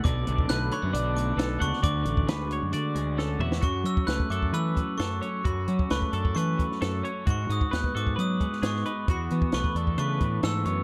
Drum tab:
HH |x-x-x-x-x-x-x-x-|x-x-x-x-x-x-----|x-x-x-x-x-x-x-x-|x-x-x-x-x-x-x-x-|
SD |----o-------o--o|----o-------o--o|----o-------o---|----o------oo---|
T2 |----------------|--------------o-|----------------|----------------|
BD |o--o----------o-|o--o------------|o--o-o-o--o-----|o--o-o-o--o-----|

HH |x-x-x-x-x-x-x-x-|x-x-x-x-x-x-x-x-|
SD |----o------ooo--|----o-------o---|
T2 |----------------|----------------|
BD |o--o-o-o--o-----|o--o-o-o--o-----|